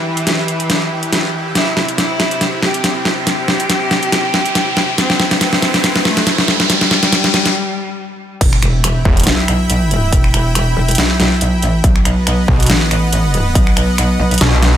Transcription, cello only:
0.00 1.47 E3 loud
1.55 1.86 E4 loud
1.98 2.55 E4 loud
2.63 2.93 G4 medium
3.05 4.90 G4 loud
4.98 5.28 C4 loud
5.41 5.98 C4 loud
6.05 6.36 A3 medium
6.48 8.33 G3 loud

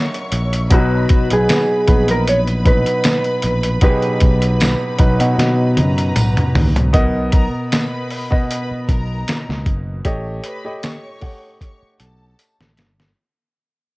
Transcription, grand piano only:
0.00 0.71 F#3 medium
0.00 0.73 E4 medium
0.00 0.73 G#4 medium
0.00 0.73 A#4 medium
0.00 0.72 D#5 medium
0.00 0.73 E5 loud
0.70 1.06 B2 loud
0.70 1.06 F#3 medium
0.70 1.07 D#4 medium
0.70 1.07 B4 loud
1.31 1.66 B2 medium
1.31 1.66 F#3 medium
1.31 1.66 D#4 medium
1.31 1.67 B4 medium
1.87 2.35 F#3 medium
1.87 2.35 B3 medium
1.87 2.36 D#4 medium
1.87 2.36 B4 medium
2.65 3.37 B2 medium
2.65 3.37 F#3 medium
2.65 3.37 D#4 medium
2.65 3.37 B4 medium
3.82 4.53 B2 loud
3.82 4.54 F#3 medium
3.82 4.54 D#4 medium
3.82 3.90 G4 medium
3.89 4.57 G#4 loud
4.98 5.11 B2 medium
4.98 5.12 F#3 medium
4.98 5.12 D#4 medium
4.98 5.12 B4 loud
5.19 6.13 B2 medium
5.19 6.13 F#3 medium
5.19 6.13 D#4 medium
5.19 6.14 F#4 loud
6.93 7.76 B2 loud
6.93 7.76 B3 loud
6.93 7.77 A#4 medium
6.93 7.77 D#5 loud
8.31 9.24 B2 loud
8.31 9.24 B3 medium
8.31 9.25 B4 medium
8.31 9.25 D#5 loud
10.05 10.41 A3 loud
10.05 10.41 G4 loud
10.05 10.41 C#5 loud
10.05 10.41 D#5 loud
10.64 11.00 A3 medium
10.64 11.00 G4 medium
10.64 11.00 C#5 medium
10.64 11.00 D#5 medium
11.21 12.17 A3 medium
11.21 12.17 G4 medium
11.21 12.18 C#5 medium
11.21 12.18 F#5 medium

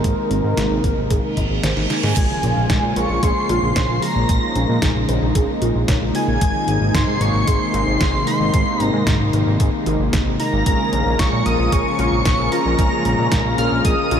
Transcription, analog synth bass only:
0.04 0.15 G#1 loud
0.31 0.41 G#1 medium
0.44 0.54 G#2 medium
0.57 0.68 G#1 medium
0.70 0.81 G#1 medium
0.84 0.94 G#1 medium
0.97 1.08 G#1 medium
1.11 1.21 G#1 loud
1.37 1.47 G#1 medium
1.50 1.61 G#1 medium
1.64 1.74 G#1 loud
1.77 1.87 G#1 medium
2.03 2.14 G#2 medium
2.17 2.27 A#1 loud
2.43 2.54 A#1 medium
2.57 2.67 A#1 medium
2.70 2.80 A#1 medium
2.83 2.93 A#2 medium
2.96 3.07 A#1 loud
3.10 3.20 A#1 medium
3.23 3.33 A#1 loud
3.49 3.60 A#1 loud
3.63 3.73 A#1 medium
3.76 3.86 A#1 loud
3.89 4.00 A#1 medium
4.16 4.26 A#1 medium
4.29 4.39 A#1 loud
4.56 4.66 A#1 medium
4.69 4.79 A#2 medium
4.82 4.93 A#1 loud
4.96 5.06 A#1 medium
5.09 5.19 A#1 medium
5.22 5.32 A#1 medium
5.35 5.46 A#1 loud
5.62 5.72 A#1 medium
5.75 5.85 A#1 medium
5.88 5.99 A#1 loud
6.02 6.12 A#1 medium
6.28 6.38 A#1 medium
6.42 6.52 G#1 loud
6.68 6.78 G#1 medium
6.81 6.92 G#1 medium
6.95 7.05 G#1 loud
7.07 7.18 G#2 medium
7.21 7.31 G#1 medium
7.34 7.45 G#1 medium
7.48 7.58 G#1 loud
7.74 7.84 G#1 medium
7.87 7.98 G#1 medium
8.01 8.11 G#1 loud
8.14 8.24 G#1 medium
8.40 8.51 G#1 medium
8.54 8.64 G#1 loud
8.80 8.91 G#1 medium
8.93 9.04 G#2 medium
9.07 9.17 G#1 loud
9.20 9.30 G#1 medium
9.33 9.44 G#1 medium
9.47 9.57 G#1 medium
9.60 9.70 G#1 loud
9.86 9.97 G#1 loud
10.00 10.10 G#1 medium
10.13 10.23 G#1 loud
10.26 10.37 G#1 medium
10.53 10.63 G#1 medium
10.66 10.77 A#1 loud
10.93 11.03 A#1 medium
11.06 11.16 A#1 medium
11.19 11.30 A#1 loud
11.33 11.43 A#2 medium
11.46 11.56 A#1 loud
11.59 11.70 A#1 medium
11.72 11.83 A#1 loud
11.99 12.09 A#1 medium
12.12 12.23 A#1 medium
12.26 12.36 A#1 loud
12.39 12.49 A#1 medium
12.66 12.76 A#1 medium
12.79 12.89 A#1 loud
13.05 13.16 A#1 medium
13.19 13.29 A#2 medium
13.32 13.42 A#1 loud
13.45 13.55 A#1 medium
13.59 13.69 A#1 loud
13.72 13.82 A#1 medium
13.85 13.95 A#1 loud
14.12 14.20 A#1 medium

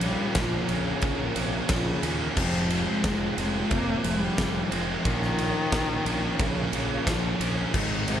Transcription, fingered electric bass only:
0.00 0.16 A#1 loud
0.35 0.59 A#1 medium
0.69 0.93 A#1 medium
1.03 1.26 A#1 medium
1.36 1.60 A#1 medium
1.69 1.93 A#1 medium
2.03 2.27 D#2 loud
2.37 2.84 F1 loud
3.04 3.28 F1 medium
3.38 3.61 F1 medium
3.71 3.95 F1 medium
4.05 4.28 F1 medium
4.39 4.62 F1 loud
4.71 4.95 F1 medium
5.05 5.53 A#1 medium
5.73 5.96 A#1 medium
6.05 6.29 A#1 medium
6.40 6.63 A#1 loud
6.73 6.97 A#1 medium
7.07 7.31 A#1 medium
7.41 7.64 A#1 medium
7.74 8.20 G#1 loud

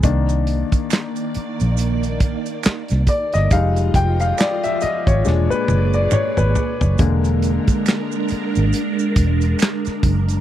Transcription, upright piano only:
0.03 0.64 D#3 medium
0.03 0.64 A#3 medium
0.03 0.64 D4 medium
3.09 3.32 D5 medium
3.34 3.52 D#5 medium
3.52 4.78 G3 medium
3.52 4.78 G#3 medium
3.52 4.78 D#4 medium
3.52 3.92 F5 loud
3.95 4.21 G5 loud
4.20 4.39 F5 loud
4.39 4.64 D5 medium
4.64 4.69 E5 medium
4.82 5.08 D#5 medium
5.07 5.52 C#5 medium
5.25 6.95 A#2 soft
5.25 6.95 G#3 medium
5.25 6.96 D4 medium
5.50 5.91 B4 medium
5.94 6.11 D5 medium
6.13 6.36 C#5 medium
6.38 6.95 B4 medium
6.99 7.60 D3 medium
6.99 7.60 G#3 soft
6.99 7.60 A#3 medium

